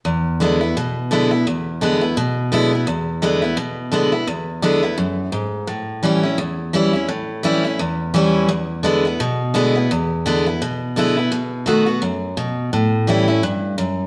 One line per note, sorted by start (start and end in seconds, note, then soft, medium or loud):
0.05 0.73 E2 medium
0.40 0.60 D3 medium
0.40 0.60 G#3 medium
0.40 0.61 B3 medium
0.40 0.60 E4 medium
0.61 0.76 B3 soft
0.61 0.75 E4 medium
0.77 1.44 B2 medium
1.11 1.30 D3 medium
1.11 1.31 G#3 medium
1.11 1.31 B3 loud
1.11 1.30 E4 medium
1.31 1.46 B3 soft
1.31 1.45 E4 medium
1.47 2.14 E2 medium
1.81 2.01 D3 medium
1.81 2.01 G#3 medium
1.81 2.02 B3 medium
1.81 2.00 E4 loud
2.01 2.17 B3 soft
2.01 2.16 E4 medium
2.17 2.84 B2 medium
2.52 2.71 D3 medium
2.52 2.72 G#3 medium
2.52 2.72 B3 loud
2.52 2.72 E4 loud
2.73 2.88 B3 soft
2.73 2.87 E4 medium
2.87 3.54 E2 medium
3.22 3.42 D3 medium
3.22 3.42 G#3 medium
3.22 3.42 B3 medium
3.22 3.41 E4 loud
3.42 3.57 B3 soft
3.42 3.56 E4 medium
3.57 4.24 B2 medium
3.92 4.12 D3 medium
3.92 4.12 G#3 medium
3.92 4.12 B3 medium
3.92 4.11 E4 loud
4.12 4.28 B3 soft
4.12 4.27 E4 medium
4.27 4.95 E2 medium
4.62 4.82 D3 medium
4.62 4.82 G#3 medium
4.62 4.83 B3 medium
4.62 4.81 E4 medium
4.83 4.98 B3 soft
4.83 4.97 E4 medium
4.98 5.31 F#2 medium
5.32 5.66 G#2 medium
5.67 6.35 A2 medium
6.03 6.23 E3 medium
6.03 6.23 G3 medium
6.03 6.24 C#4 medium
6.03 6.22 E4 medium
6.23 6.39 C#4 soft
6.23 6.38 E4 medium
6.38 7.06 E2 medium
6.73 6.93 E3 medium
6.73 6.94 G3 medium
6.73 6.94 C#4 medium
6.73 6.92 E4 loud
6.93 7.09 C#4 soft
6.93 7.08 E4 medium
7.08 7.76 A2 medium
7.43 7.63 E3 medium
7.43 7.64 G3 medium
7.43 7.64 C#4 medium
7.43 7.63 E4 loud
7.65 7.80 C#4 soft
7.65 7.79 E4 medium
7.79 8.47 E2 medium
8.14 8.48 E3 loud
8.14 8.48 G3 medium
8.14 8.49 C#4 loud
8.14 8.49 E4 medium
8.49 9.17 E2 medium
8.83 9.04 D3 medium
8.83 9.04 G#3 medium
8.83 9.04 B3 loud
8.83 9.04 E4 loud
9.05 9.20 B3 soft
9.05 9.19 E4 medium
9.20 9.88 B2 medium
9.54 9.74 D3 medium
9.54 9.75 G#3 medium
9.54 9.75 B3 loud
9.54 9.74 E4 medium
9.75 9.91 B3 soft
9.75 9.90 E4 medium
9.91 10.58 E2 medium
10.26 10.45 D3 medium
10.26 10.46 G#3 medium
10.26 10.46 B3 medium
10.26 10.45 E4 medium
10.46 10.61 B3 soft
10.46 10.60 E4 medium
10.62 11.29 B2 medium
10.96 11.16 D3 medium
10.96 11.16 G#3 medium
10.96 11.17 B3 medium
10.96 11.16 E4 medium
11.17 11.32 B3 soft
11.17 11.31 E4 medium
11.32 11.99 B2 medium
11.66 11.86 D#3 medium
11.66 11.86 A3 medium
11.66 11.87 B3 medium
11.66 11.85 F#4 medium
11.86 12.02 B3 medium
11.86 12.01 F#4 medium
12.02 12.35 F#2 medium
12.37 12.71 B2 medium
12.73 13.40 A2 medium
13.07 13.27 E3 medium
13.07 13.27 G3 medium
13.07 13.28 C#4 medium
13.07 13.27 E4 medium
13.28 13.43 C#4 medium
13.28 13.42 E4 medium
13.43 13.76 G2 medium
13.78 14.07 F#2 medium